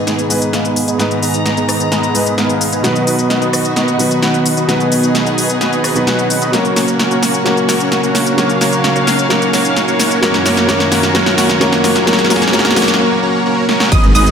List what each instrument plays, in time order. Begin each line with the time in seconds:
Already playing: grand piano G#2 G#3 B3 D#4 B4, string section D#3 B3 G#4, riser
0.07 supersaw synth B3 D#4 G#4 B4 D#5, snare, closed hi-hat, cabasa
0.19 closed hi-hat, cabasa
0.29 grand piano G#2 G#3 B3 D#4 B4, open hi-hat, cabasa
0.42 closed hi-hat, cabasa
0.53 supersaw synth B3 D#4 G#4 B4 F5, snare, closed hi-hat, cabasa
0.65 closed hi-hat, cabasa
0.76 open hi-hat, cabasa
0.88 supersaw synth B3 D#4 G#4 B4 D#5, closed hi-hat, cabasa
0.98 grand piano G#2 G#3 B3 D#4 B4, supersaw synth B3 D#4 G#4 B4 D#5, string section A#5, snare, closed hi-hat, cabasa
1.11 closed hi-hat, cabasa
1.23 supersaw synth B3 D#4 G#4 B4 D#5, open hi-hat, cabasa
1.34 closed hi-hat, cabasa
1.46 snare, closed hi-hat, cabasa
1.57 supersaw synth B3 D#4 G#4 B4 D#5, closed hi-hat, cabasa
1.69 cross-stick, open hi-hat, cabasa
1.80 closed hi-hat, cabasa
1.92 supersaw synth B3 D#4 G#4 B4 D#5, snare, closed hi-hat, cabasa
2.03 closed hi-hat, cabasa
2.14 grand piano G#2 G#3 B3 D#4 B4, open hi-hat, cabasa
2.26 closed hi-hat, cabasa
2.38 supersaw synth B3 D#4 G#4 B4 F5, snare, closed hi-hat, cabasa
2.49 closed hi-hat, cabasa
2.61 open hi-hat, cabasa
2.72 supersaw synth B3 D#4 G#4 B4 D#5, closed hi-hat, cabasa
2.83 grand piano B2 F#3 B3 D#4 B4, supersaw synth B3 D#4 F#4 B4 D#5, string section F#4, snare, closed hi-hat, cabasa
2.96 closed hi-hat, cabasa
3.07 supersaw synth B3 D#4 F#4 B4 D#5, open hi-hat, cabasa
3.19 closed hi-hat, cabasa
3.30 snare, closed hi-hat, cabasa
3.42 supersaw synth B3 D#4 F#4 B4 D#5, closed hi-hat, cabasa
3.53 cross-stick, open hi-hat, cabasa
3.65 closed hi-hat, cabasa
3.76 supersaw synth B3 D#4 F#4 B4 D#5, snare, closed hi-hat, cabasa
3.88 closed hi-hat, cabasa
3.98 grand piano B2 F#3 B3 D#4 B4, open hi-hat, cabasa
4.11 closed hi-hat, cabasa
4.23 supersaw synth B3 D#4 F#4 B4 F#5, snare, closed hi-hat, cabasa
4.34 closed hi-hat, cabasa
4.46 open hi-hat, cabasa
4.57 supersaw synth B3 D#4 F#4 B4 D#5, closed hi-hat, cabasa
4.67 grand piano B2 F#3 B3 D#4 B4, supersaw synth B3 D#4 F#4 B4 D#5, string section G#4, snare, closed hi-hat, cabasa
4.80 closed hi-hat, cabasa
4.92 supersaw synth B3 D#4 F#4 B4 D#5, open hi-hat, cabasa
5.03 closed hi-hat, cabasa
5.15 snare, closed hi-hat, cabasa
5.26 supersaw synth B3 D#4 F#4 B4 D#5, closed hi-hat, cabasa
5.38 open hi-hat, cabasa
5.49 closed hi-hat, cabasa
5.61 supersaw synth B3 D#4 F#4 B4 D#5, snare, closed hi-hat, cabasa
5.73 closed hi-hat, cabasa
5.84 cross-stick, open hi-hat, cabasa
5.95 grand piano B2 F#3 B3 D#4 B4, closed hi-hat, cabasa
6.06 grand piano B2 F#3 B3 D#4 B4, supersaw synth B3 D#4 F#4 B4 F#5, snare, closed hi-hat, cabasa
6.19 closed hi-hat, cabasa
6.30 open hi-hat, cabasa
6.42 supersaw synth B3 D#4 F#4 B4 D#5, closed hi-hat, cabasa
6.52 string section C#3 A#3 F#4, grand piano F#3 A#3 C#4 A#4, supersaw synth A#3 C#4 F#4 A#4 C#5, snare, closed hi-hat, cabasa
6.65 closed hi-hat, cabasa
6.76 supersaw synth A#3 C#4 F#4 A#4 C#5, snare, open hi-hat, cabasa
6.88 closed hi-hat, cabasa
6.99 snare, closed hi-hat, cabasa
7.11 supersaw synth A#3 C#4 F#4 A#4 C#5, closed hi-hat, cabasa
7.23 snare, open hi-hat, cabasa
7.34 closed hi-hat, cabasa
7.44 grand piano F#3 A#3 C#4 A#4, supersaw synth A#3 C#4 F#4 A#4 C#5, snare, closed hi-hat, cabasa
7.57 closed hi-hat, cabasa
7.69 supersaw synth A#3 C#4 F#4 A#4 C#5, snare, open hi-hat, cabasa
7.80 closed hi-hat, cabasa
7.92 snare, closed hi-hat, cabasa
8.03 supersaw synth A#3 C#4 F#4 A#4 C#5, closed hi-hat, cabasa
8.15 snare, open hi-hat, cabasa
8.26 closed hi-hat, cabasa
8.37 grand piano F#3 A#3 C#4 A#4, supersaw synth A#3 C#4 F#4 A#4 C#5, string section F5, snare, closed hi-hat, cabasa
8.49 closed hi-hat, cabasa
8.61 supersaw synth A#3 C#4 F#4 A#4 C#5, snare, open hi-hat, cabasa
8.73 closed hi-hat, cabasa
8.84 snare, closed hi-hat, cabasa
8.96 supersaw synth A#3 C#4 F#4 A#4 C#5, closed hi-hat, cabasa
9.07 snare, open hi-hat, cabasa
9.19 closed hi-hat, cabasa
9.29 grand piano F#3 A#3 C#4 A#4, supersaw synth A#3 C#4 F#4 A#4 C#5, snare, closed hi-hat, cabasa
9.42 closed hi-hat, cabasa
9.53 supersaw synth A#3 C#4 F#4 A#4 C#5, snare, open hi-hat, cabasa
9.65 closed hi-hat, cabasa
9.76 snare, closed hi-hat, cabasa
9.88 supersaw synth A#3 C#4 F#4 A#4 C#5, closed hi-hat, cabasa
10.00 snare, open hi-hat, cabasa
10.11 closed hi-hat, cabasa
10.21 string section F#2 D#3 F#4, grand piano F#3 A#3 C#4 A#4, supersaw synth A#3 C#4 F#4 A#4 C#5, snare, closed hi-hat, cabasa
10.34 snare, closed hi-hat, cabasa
10.46 supersaw synth A#3 C#4 F#4 A#4 C#5, snare, open hi-hat, cabasa
10.57 snare, closed hi-hat, cabasa
10.68 grand piano F#3 A#3 C#4 A#4, supersaw synth A#3 C#4 F#4 A#4 C#5, snare, closed hi-hat, cabasa
10.80 snare, closed hi-hat, cabasa
10.92 supersaw synth A#3 C#4 F#4 A#4 C#5, snare, open hi-hat, cabasa
11.03 snare, closed hi-hat, cabasa
11.14 grand piano F#3 A#3 C#4 A#4, supersaw synth A#3 C#4 F#4 A#4 C#5, snare, closed hi-hat, cabasa
11.26 snare, closed hi-hat, cabasa
11.38 supersaw synth A#3 C#4 F#4 A#4 C#5, snare, open hi-hat, cabasa
11.49 snare, closed hi-hat, cabasa
11.60 grand piano F#3 A#3 C#4 A#4, supersaw synth A#3 C#4 F#4 A#4 C#5, snare, closed hi-hat, cabasa
11.73 snare, closed hi-hat, cabasa
11.84 supersaw synth A#3 C#4 F#4 A#4 C#5, snare, open hi-hat, cabasa
11.96 snare, closed hi-hat, cabasa
12.06 grand piano F#3 A#3 C#4 A#4, supersaw synth A#3 C#4 F#4 A#4 C#5, string section G#4, snare, closed hi-hat, cabasa
12.13 snare
12.19 snare, closed hi-hat, cabasa
12.25 snare
12.29 grand piano F#3 A#3 C#4 A#4, supersaw synth A#3 C#4 F#4 A#4 C#5, snare, open hi-hat, cabasa
12.36 snare
12.42 snare, closed hi-hat, cabasa
12.48 snare
12.52 grand piano F#3 A#3 C#4 A#4, supersaw synth A#3 C#4 F#4 A#4 C#5, snare, closed hi-hat, cabasa
12.59 snare
12.65 snare, closed hi-hat, cabasa
12.71 snare
12.75 grand piano F#3 A#3 C#4 A#4, supersaw synth A#3 C#4 F#4 A#4 C#5, snare, open hi-hat, cabasa
12.82 snare
12.88 snare, closed hi-hat, cabasa
12.94 snare
13.00 supersaw synth A#3 C#4 F#4 A#4 C#5
13.23 supersaw synth A#3 C#4 F#4 A#4 C#5
13.46 supersaw synth A#3 C#4 F#4 A#4 C#5
13.69 supersaw synth A#3 C#4 F#4 A#4 C#5, snare
13.80 snare
13.92 detuned saw bass G#1, string section D#3 B3 G#4, supersaw synth B3 D#4 G#4 B4 D#5, synth pluck D#6, kick, closed hi-hat, crash, impact, cabasa
14.03 closed hi-hat, cabasa
14.15 detuned saw bass G#1, supersaw synth B3 D#4 G#4 B4 D#5, synth pluck D#6, open hi-hat, cabasa
14.26 closed hi-hat, cabasa